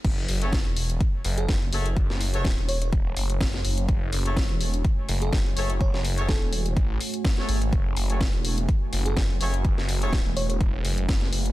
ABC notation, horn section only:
X:1
M:4/4
L:1/16
Q:"Swing 16ths" 1/4=125
K:F#m
V:1 name="Horn section"
z3 [A,FGc] z8 z2 [A,FGc] z | z3 [A,FGc] z12 | z3 [A,FGc] z8 z2 [A,FGc] z | z3 [A,FGc] z8 z [A,FGc]2 z |
z3 [A,FGc] z8 z2 [A,FGc] z | z3 [A,FGc] z12 |]